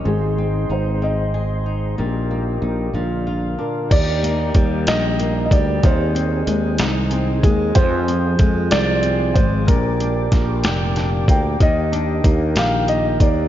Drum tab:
CC |------|------|x-----|------|
HH |------|------|xxxxxx|xxxxxx|
SD |------|------|---o--|---o--|
BD |------|------|o-o--o|o----o|

CC |------|------|------|
HH |xxxxxx|xxxxxx|xxxxxx|
SD |---o--|--ooo-|---o--|
BD |o-o--o|o-o--o|o-o--o|